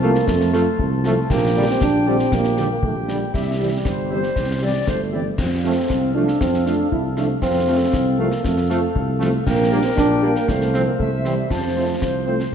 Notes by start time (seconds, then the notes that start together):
Already playing: C2 F4 A5
0.02 F3 A3 A#3 C4 F4 F5
0.15 snare
0.27 F2 A3, concert bass drum, snare
0.41 snare
0.53 F3 A3 C4 F4 F5, snare
0.79 C2, concert bass drum
1.04 F3 A3 C4 F4 F5, snare
1.30 A#1 A#3 G4 G5, concert bass drum, snare, crash
1.56 D3 G3 D4 G4 D5
1.70 C4
1.81 A#1 D4, concert bass drum, snare
2.06 D3 G3 C4 D4 G4 D5
2.19 snare
2.31 A#1 A#3, concert bass drum, snare
2.44 snare
2.57 D3 G3 D4 G4 D5, snare
2.71 A#3
2.83 A#1 A3, concert bass drum
3.08 D3 G3 D4 G4 D5, snare
3.34 C2 G3 G4 E5, concert bass drum, snare
3.59 E3 G3 C4 G4 E5
3.85 G1 C5, concert bass drum, snare
4.10 E3 G3 C4 G4 C5 E5
4.23 snare
4.36 C2, concert bass drum, snare
4.61 E3 G3 C4 G4 D5 E5
4.86 G1 A3 C5, concert bass drum, snare
5.12 E3 G3 C4 G4 D5 E5
5.38 F2 C4 A4 F5, concert bass drum, snare, crash
5.63 F3 A3 C4 F4 F5
5.90 C2, concert bass drum, snare
6.14 F3 A3 C4 D4 F4 F5
6.28 snare
6.41 F2 C4, concert bass drum, snare
6.54 snare
6.65 F3 A3 C4 D4 F4 F5, snare
6.91 C2 E4, concert bass drum
7.17 F3 A3 C4 D4 F4 F5, snare
7.42 F2 C4 A4 F5, concert bass drum, snare
7.67 F3 A3 C4 F4 F5
7.93 C2, concert bass drum, snare
8.17 F3 A3 A#3 C4 F4 F5
8.32 snare
8.44 F2 A3, concert bass drum, snare
8.58 snare
8.69 F3 A3 C4 F4 F5, snare
8.95 C2, concert bass drum
9.19 F3 A3 C4 F4 F5, snare
9.46 A#1 A#3 A#4 G5, concert bass drum, snare, crash
9.71 G3 A#3 D4 G4 D5
9.85 C4
9.96 A#1 D4, concert bass drum, snare
10.22 G3 A#3 D4 G4 D5
10.36 A#3, snare
10.48 C2 A3 C5 F5, concert bass drum, snare
10.61 snare
10.74 F3 C4 F4 F5, snare
10.87 A#3
10.99 C2 A3 E5, concert bass drum
11.24 E3 G3 C4 E4 C5, snare
11.50 F2 F3 C5 A5, concert bass drum, snare
11.75 A3 C4 F4 C5
12.01 C2 C5, concert bass drum, snare
12.26 A3 C4 F4 C5
12.40 snare